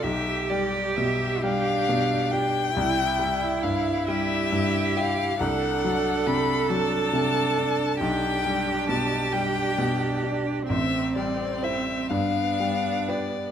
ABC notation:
X:1
M:6/8
L:1/8
Q:3/8=45
K:Gmix
V:1 name="Violin"
e d e f2 g- | g2 f e2 f | ^f2 b a3 | g2 a g2 z |
e d e f2 d |]
V:2 name="Cello"
G3 D3 | E3 G3 | A6 | G6 |
C3 D3 |]
V:3 name="Viola"
G6 | E6 | D3 D3 | D3 D3 |
C3 B,3 |]
V:4 name="Grand piano" clef=bass
B,,, G, B,, G, B,, G | C,, G, G,, G, G,, G | C,, ^F, C, F, C, D | B,,, G, B,, G, B,, D |
A,,, G, [Ec] G,, G, [GB] |]